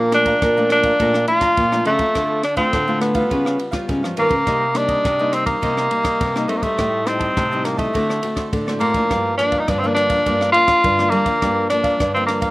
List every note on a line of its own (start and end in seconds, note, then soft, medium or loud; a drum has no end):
0.00 0.33 A#2 medium
0.00 0.39 A#2 medium
0.00 0.11 F3 medium
0.00 0.12 D4 medium
0.00 0.11 A4 medium
0.00 0.12 D5 medium
0.00 0.12 F5 medium
0.00 0.12 A#5 medium
0.12 0.40 F3 medium
0.12 0.40 A3 medium
0.12 0.40 D4 medium
0.12 0.67 D4 medium
0.12 cross-stick medium
0.12 ride soft
0.26 0.41 D5 medium
0.26 0.40 F5 medium
0.26 0.40 A#5 medium
0.26 kick medium
0.26 ride soft
0.42 0.97 F2 soft
0.42 0.91 A#2 loud
0.42 0.55 A4 soft
0.42 0.55 D5 soft
0.42 0.56 F5 medium
0.42 0.55 A#5 soft
0.42 kick medium
0.42 cross-stick medium
0.42 ride soft
0.56 0.96 F3 medium
0.56 0.96 A3 medium
0.56 0.96 D4 medium
0.56 0.69 D5 soft
0.56 0.70 F5 soft
0.56 0.70 A#5 soft
0.69 1.25 D4 medium
0.69 0.83 A4 soft
0.69 0.84 D5 soft
0.69 0.83 F5 medium
0.69 0.82 A#5 soft
0.69 cross-stick medium
0.69 ride soft
0.83 0.99 D5 medium
0.83 0.98 F5 medium
0.83 0.98 A#5 medium
0.83 kick medium
0.83 ride soft
0.99 1.24 A#2 medium
0.99 1.55 A#2 medium
0.99 1.17 F3 medium
0.99 1.17 A3 medium
0.99 1.17 D4 medium
0.99 1.13 A4 medium
0.99 1.13 D5 medium
0.99 1.13 F5 medium
0.99 1.13 A#5 medium
0.99 kick medium
0.99 ride soft
1.14 1.27 F5 soft
1.14 1.27 A#5 soft
1.14 cross-stick medium
1.28 1.55 F3 soft
1.28 1.55 A3 medium
1.28 1.56 D4 medium
1.28 1.82 F4 loud
1.28 ride soft
1.41 1.71 D5 soft
1.41 1.70 F5 medium
1.41 1.70 A#5 medium
1.41 kick medium
1.41 cross-stick medium
1.41 ride soft
1.57 2.12 F2 medium
1.57 1.82 A#2 medium
1.57 kick medium
1.57 ride soft
1.72 1.96 F3 soft
1.72 1.97 A3 medium
1.72 1.97 D4 medium
1.72 1.84 D5 soft
1.72 1.85 F5 soft
1.72 1.85 A#5 soft
1.72 cross-stick medium
1.85 1.98 C#3 medium
1.85 2.40 A3 medium
1.85 1.99 A4 medium
1.85 1.99 D5 medium
1.85 1.98 F5 medium
1.85 1.97 A#5 medium
1.85 ride soft
1.98 2.39 A3 medium
1.98 2.39 C4 medium
1.98 2.39 F4 medium
1.98 2.14 D5 soft
1.98 2.14 F5 soft
1.98 2.13 A#5 soft
1.98 kick medium
1.98 ride soft
2.15 2.70 D3 soft
2.15 2.65 D3 medium
2.15 2.42 D4 medium
2.15 2.42 A4 medium
2.15 2.43 C5 medium
2.15 2.43 F5 medium
2.15 kick medium
2.15 cross-stick medium
2.15 ride soft
2.43 2.56 D4 medium
2.43 muted cavaquinho stroke soft
2.43 cross-stick medium
2.43 ride soft
2.56 2.82 A3 medium
2.56 2.82 C4 medium
2.56 2.98 C4 medium
2.56 2.82 F4 medium
2.56 2.72 A4 medium
2.56 2.71 C5 medium
2.56 2.71 F5 medium
2.56 kick medium
2.56 ride soft
2.73 3.28 A2 soft
2.73 3.22 D3 medium
2.73 2.86 D4 soft
2.73 2.87 A4 soft
2.73 2.87 C5 soft
2.73 2.87 F5 medium
2.73 kick medium
2.73 cross-stick medium
2.73 ride soft
2.88 3.12 A3 medium
2.88 3.12 C4 medium
2.88 3.12 F4 medium
2.88 3.01 A4 soft
2.88 3.01 C5 soft
2.88 3.01 F5 soft
3.01 3.86 B3 medium
3.01 3.15 D4 soft
3.01 3.15 A4 soft
3.01 3.14 C5 soft
3.01 3.14 F5 soft
3.01 cross-stick medium
3.01 ride soft
3.14 3.69 G3 medium
3.14 3.69 B3 medium
3.14 3.69 F4 medium
3.14 3.30 A4 medium
3.14 3.29 C5 medium
3.14 3.29 F5 medium
3.14 kick medium
3.14 ride soft
3.30 3.86 C#3 medium
3.30 3.56 C#3 medium
3.30 3.44 F4 medium
3.30 3.44 B4 medium
3.30 3.45 C#5 medium
3.30 3.44 F5 medium
3.30 kick medium
3.30 ride soft
3.45 3.57 B4 soft
3.45 3.58 C#5 soft
3.45 3.58 F5 soft
3.45 cross-stick medium
3.58 muted cavaquinho stroke soft
3.58 ride soft
3.71 4.12 G3 medium
3.71 4.12 B3 medium
3.71 4.12 F4 medium
3.71 4.02 B4 medium
3.71 4.01 C#5 medium
3.71 4.01 F5 medium
3.71 kick medium
3.71 cross-stick medium
3.71 ride soft
3.88 4.44 G#2 medium
3.88 4.01 C#3 medium
3.88 kick medium
3.88 ride soft
4.03 4.17 F3 medium
4.03 4.16 B4 soft
4.03 4.16 C#5 soft
4.03 4.17 F5 soft
4.03 cross-stick medium
4.16 4.31 D#3 medium
4.16 4.34 G3 medium
4.16 4.79 A#3 medium
4.16 4.34 B3 medium
4.16 4.30 F4 medium
4.16 4.35 F4 medium
4.16 4.31 B4 medium
4.16 4.30 C#5 medium
4.16 4.29 F5 medium
4.16 ride soft
4.29 4.44 C#3 medium
4.29 4.45 B4 soft
4.29 4.45 C#5 soft
4.29 4.45 F5 soft
4.29 kick medium
4.29 ride soft
4.46 5.02 C3 soft
4.46 4.96 C3 medium
4.46 4.64 G3 medium
4.46 4.64 A#3 medium
4.46 4.73 D#4 medium
4.46 4.64 D#4 medium
4.46 4.74 A#4 medium
4.46 4.74 C5 medium
4.46 4.74 D#5 medium
4.46 kick medium
4.46 cross-stick medium
4.46 ride soft
4.74 5.02 G3 medium
4.74 5.02 A#3 medium
4.74 5.35 D4 medium
4.74 5.03 D#4 medium
4.74 muted cavaquinho stroke soft
4.74 cross-stick medium
4.74 ride soft
4.88 5.04 A#4 medium
4.88 5.03 C5 medium
4.88 5.03 D#5 medium
4.88 kick medium
4.88 ride soft
5.04 5.60 G2 medium
5.04 5.54 C3 medium
5.04 5.18 D#4 soft
5.04 5.18 A#4 soft
5.04 5.19 C5 soft
5.04 5.19 D#5 soft
5.04 kick medium
5.04 cross-stick medium
5.04 ride soft
5.19 5.58 G3 medium
5.19 5.58 A#3 medium
5.19 5.59 D#4 medium
5.19 5.32 A#4 soft
5.19 5.32 C5 soft
5.19 5.33 D#5 soft
5.32 5.46 C4 medium
5.32 5.46 D#4 soft
5.32 5.47 A#4 soft
5.32 5.46 C5 soft
5.32 5.45 D#5 soft
5.32 cross-stick medium
5.32 ride soft
5.46 6.50 A#3 medium
5.46 5.61 A#4 medium
5.46 5.61 C5 medium
5.46 5.60 D#5 medium
5.46 kick medium
5.46 ride medium
5.62 6.18 C3 medium
5.62 5.88 C3 medium
5.62 5.87 G3 medium
5.62 5.87 A#3 medium
5.62 5.76 D#4 medium
5.62 5.87 D#4 medium
5.62 5.76 A#4 medium
5.62 5.76 C5 medium
5.62 5.76 D#5 medium
5.62 kick medium
5.62 ride soft
5.77 5.90 A#4 soft
5.77 5.90 C5 soft
5.77 5.90 D#5 medium
5.77 cross-stick medium
5.90 6.30 G3 medium
5.90 6.30 A#3 soft
5.90 6.30 D#4 medium
5.90 muted cavaquinho stroke soft
5.90 ride soft
6.03 6.34 A#4 soft
6.03 6.33 C5 medium
6.03 6.33 D#5 medium
6.03 kick medium
6.03 cross-stick medium
6.03 ride soft
6.21 6.76 G2 medium
6.21 6.45 C3 medium
6.21 kick medium
6.21 ride soft
6.35 6.60 G3 medium
6.35 6.60 A#3 medium
6.35 6.60 D#4 medium
6.35 6.48 A#4 soft
6.35 6.48 C5 soft
6.35 6.49 D#5 soft
6.35 cross-stick medium
6.48 6.58 A3 medium
6.48 6.62 C4 medium
6.48 6.62 D#4 medium
6.48 6.63 A#4 medium
6.48 6.62 C5 medium
6.48 6.61 D#5 medium
6.48 ride soft
6.57 6.65 A#3 medium
6.62 7.02 G3 medium
6.62 7.08 A3 medium
6.62 7.03 C4 medium
6.62 7.03 D#4 medium
6.62 6.77 A#4 soft
6.62 6.77 C5 soft
6.62 6.76 D#5 soft
6.62 kick medium
6.62 ride soft
6.77 7.28 A2 medium
6.77 7.34 A2 medium
6.77 7.04 G4 medium
6.77 7.05 C5 medium
6.77 7.05 D#5 medium
6.77 7.05 A5 medium
6.77 kick medium
6.77 cross-stick medium
6.77 ride soft
7.06 7.46 G3 medium
7.06 7.66 C4 medium
7.06 7.46 C4 medium
7.06 7.47 D#4 medium
7.06 muted cavaquinho stroke soft
7.06 cross-stick medium
7.06 ride soft
7.19 7.35 C5 soft
7.19 7.35 D#5 medium
7.19 7.34 A5 medium
7.19 kick medium
7.19 ride soft
7.36 7.92 A2 medium
7.36 7.86 C3 medium
7.36 7.50 G4 soft
7.36 7.50 C5 soft
7.36 7.50 D#5 soft
7.36 7.50 A5 medium
7.36 kick medium
7.36 cross-stick medium
7.36 ride soft
7.51 7.91 G3 medium
7.51 7.91 C4 medium
7.51 7.91 D#4 medium
7.51 7.63 C5 soft
7.51 7.64 D#5 soft
7.51 7.64 A5 soft
7.63 7.78 A#3 medium
7.63 7.78 G4 soft
7.63 7.78 C5 soft
7.63 7.77 D#5 soft
7.63 7.76 A5 soft
7.63 cross-stick medium
7.63 ride soft
7.77 8.49 A3 medium
7.77 7.93 C5 medium
7.77 7.93 D#5 medium
7.77 7.92 A5 medium
7.77 kick medium
7.77 ride soft
7.93 8.50 D3 medium
7.93 8.19 D3 medium
7.93 8.19 A3 medium
7.93 8.19 C4 medium
7.93 8.07 F#4 medium
7.93 8.19 F#4 medium
7.93 8.08 A4 medium
7.93 8.08 C5 medium
7.93 8.07 D5 medium
7.93 kick medium
7.93 ride soft
8.09 8.20 A4 soft
8.09 8.21 C5 soft
8.09 8.21 D5 soft
8.09 cross-stick medium
8.21 8.51 A3 soft
8.21 8.51 C4 medium
8.21 8.51 F#4 medium
8.21 muted cavaquinho stroke soft
8.21 ride soft
8.35 8.66 A4 medium
8.35 8.65 C5 medium
8.35 8.64 D5 medium
8.35 kick medium
8.35 cross-stick medium
8.35 ride soft
8.53 9.08 A2 medium
8.53 8.77 D3 medium
8.53 kick medium
8.53 ride soft
8.67 8.92 A3 medium
8.67 8.92 C4 medium
8.67 8.92 F#4 medium
8.67 8.79 A4 soft
8.67 8.79 C5 soft
8.67 8.80 D5 soft
8.67 cross-stick medium
8.79 8.93 A2 medium
8.79 9.35 A#3 medium
8.79 8.93 F#4 medium
8.79 8.94 A4 medium
8.79 8.93 C5 medium
8.79 8.92 D5 medium
8.79 ride soft
8.93 9.34 F3 medium
8.93 9.34 A#3 medium
8.93 9.35 D4 medium
8.93 9.09 A4 soft
8.93 9.08 D5 soft
8.93 kick medium
8.93 ride soft
9.09 9.60 G2 medium
9.09 9.66 G2 medium
9.09 9.37 G4 medium
9.09 9.38 A#4 medium
9.09 9.38 D5 medium
9.09 9.38 F5 medium
9.09 kick medium
9.09 cross-stick medium
9.09 ride soft
9.38 9.78 F3 medium
9.38 9.78 A#3 medium
9.38 9.61 D4 medium
9.38 9.79 D4 medium
9.38 muted cavaquinho stroke soft
9.38 cross-stick medium
9.38 ride soft
9.51 9.67 A#4 medium
9.51 9.67 D5 medium
9.51 9.66 F5 medium
9.51 kick medium
9.51 ride soft
9.59 9.70 D#4 medium
9.67 10.18 G2 medium
9.67 10.24 D3 medium
9.67 9.80 D4 medium
9.67 9.81 G4 soft
9.67 9.82 A#4 soft
9.67 9.82 D5 medium
9.67 9.81 F5 medium
9.67 kick medium
9.67 cross-stick medium
9.67 ride soft
9.79 9.89 C4 medium
9.79 9.96 F5 soft
9.84 10.22 F3 medium
9.84 10.22 A#3 medium
9.84 10.22 D4 medium
9.84 9.95 A#4 soft
9.84 9.96 D5 soft
9.88 9.94 D4 medium
9.95 10.50 D4 medium
9.95 10.10 G4 soft
9.95 10.10 A#4 soft
9.95 10.09 D5 soft
9.95 10.08 F5 soft
9.95 cross-stick medium
9.95 ride soft
10.09 10.25 A#4 medium
10.09 10.24 D5 medium
10.09 10.24 F5 medium
10.09 kick medium
10.09 ride medium
10.26 10.51 G2 medium
10.26 10.82 G2 medium
10.26 10.51 F3 medium
10.26 10.51 A#3 medium
10.26 10.51 D4 medium
10.26 10.39 G4 medium
10.26 10.40 A#4 medium
10.26 10.40 D5 medium
10.26 10.40 F5 medium
10.26 kick medium
10.26 ride soft
10.41 10.53 A#4 soft
10.41 10.54 D5 soft
10.41 10.54 F5 soft
10.41 cross-stick medium
10.52 10.82 F3 medium
10.52 10.82 A#3 medium
10.52 10.82 D4 medium
10.52 11.12 F4 loud
10.52 muted cavaquinho stroke soft
10.52 ride soft
10.67 10.97 A#4 soft
10.67 10.97 D5 medium
10.67 10.96 F5 medium
10.67 kick medium
10.67 cross-stick medium
10.67 ride soft
10.84 11.09 G2 medium
10.84 11.39 D3 medium
10.84 kick medium
10.84 ride medium
10.98 11.24 F3 medium
10.98 11.24 A#3 medium
10.98 11.24 D4 medium
10.98 11.11 A#4 soft
10.98 11.12 D5 soft
10.98 11.12 F5 soft
10.98 cross-stick medium
11.10 11.25 G3 medium
11.10 11.69 A#3 medium
11.10 11.26 G4 medium
11.10 11.26 A#4 medium
11.10 11.25 D5 medium
11.10 11.24 F5 medium
11.10 ride soft
11.25 11.37 F3 medium
11.25 11.37 A#3 medium
11.25 11.37 D4 medium
11.25 11.41 A#4 soft
11.25 11.40 D5 soft
11.25 11.40 F5 soft
11.25 kick medium
11.25 ride soft
11.41 11.91 G2 medium
11.41 11.98 G2 medium
11.41 11.67 F3 medium
11.41 11.67 A#3 medium
11.41 11.67 D4 medium
11.41 11.69 G4 medium
11.41 11.69 A#4 medium
11.41 11.69 D5 medium
11.41 11.70 F5 medium
11.41 kick medium
11.41 cross-stick medium
11.41 ride soft
11.70 11.98 F3 medium
11.70 11.99 A#3 soft
11.70 12.11 D4 medium
11.70 11.99 D4 medium
11.70 cross-stick medium
11.70 ride soft
11.83 11.99 A#4 soft
11.83 11.98 D5 medium
11.83 11.98 F5 medium
11.83 kick medium
11.83 ride soft
12.00 12.49 G2 medium
12.00 12.51 D3 medium
12.00 12.13 G4 soft
12.00 12.14 A#4 soft
12.00 12.14 D5 soft
12.00 12.13 F5 soft
12.00 kick medium
12.00 cross-stick medium
12.00 ride soft
12.14 12.51 F3 medium
12.14 12.51 A#3 medium
12.14 12.26 C4 medium
12.14 12.51 D4 medium
12.14 12.27 A#4 soft
12.14 12.27 D5 soft
12.14 12.28 F5 soft
12.26 12.51 A#3 medium
12.26 12.41 G4 soft
12.26 12.42 A#4 soft
12.26 12.41 D5 soft
12.26 12.40 F5 soft
12.26 cross-stick medium
12.26 ride soft
12.41 12.51 A#4 medium
12.41 12.51 D5 medium
12.41 12.51 F5 medium
12.41 kick medium
12.41 ride soft